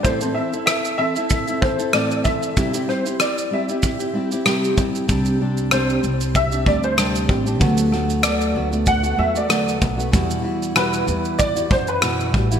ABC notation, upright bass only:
X:1
M:4/4
L:1/8
Q:"Swing 16ths" 1/4=95
K:Clyd
V:1 name="Upright bass" clef=bass
z8 | z8 | C,,3 C,,2 D,,2 A,,, | D,,3 D,,2 E,,2 B,,, |
E,,3 E,,2 F,,2 A,,, |]